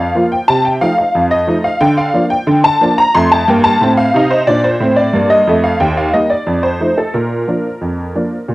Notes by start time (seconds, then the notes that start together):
0.00 F5
0.15 F3 A#3 F4
0.32 G5
0.48 C3 A5
0.65 G5
0.81 F3 A3 D#4 F5
0.98 F5
1.15 F2
1.31 D#5
1.47 F3 A3 D#4
1.64 F5
1.81 D3 G5
1.97 F5
2.14 F3 A#3 D4
2.30 G5
2.47 D3
2.64 A5
2.81 F3 A#3 D4
2.98 A#5
3.15 F2 A3 C6
3.32 A5
3.48 G2 A#3 G5
3.64 A5
3.81 A2 C4
3.97 F5
4.14 C3 D#4
4.31 C5
4.47 A#2 D4 D5
4.64 C5
4.80 A2 C4
4.96 D5
5.13 G2 A#3
5.30 D#5
5.47 F2 A3
5.64 F5
5.80 D#2 G5
5.97 F5
6.14 G3 A#3 D#4 D#5
6.30 D5
6.47 F2
6.63 C5
6.80 F3 A3 D#4
6.98 A4
7.14 A#2 A#4
7.48 F3 A#3 D4
7.81 F2
8.15 F3 A#3 D4
8.48 A#2